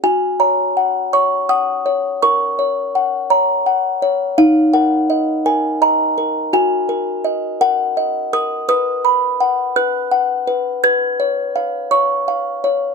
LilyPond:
\new Staff \with { instrumentName = "Music box" } { \time 6/8 \key fis \major \tempo 4. = 56 << { gis''8 ais''4 cis'''8 dis'''4 | cis'''4. ais''4. | eis''8 fis''4 gis''8 ais''4 | gis''4. fis''4 dis'''8 |
dis'''4. fis'''4. | gis'''4. cis'''4 r8 | } \\ { fis'8 cis''8 fis''8 cis''8 fis''8 cis''8 | ais'8 cis''8 fis''8 cis''8 fis''8 cis''8 | dis'8 ais'8 dis''8 ais'8 dis''8 ais'8 | fis'8 ais'8 dis''8 ais'8 dis''8 ais'8 |
b'8 b''8 fis''8 b'8 fis''8 b'8 | b'8 cis''8 eis''8 cis''8 eis''8 cis''8 | } >> }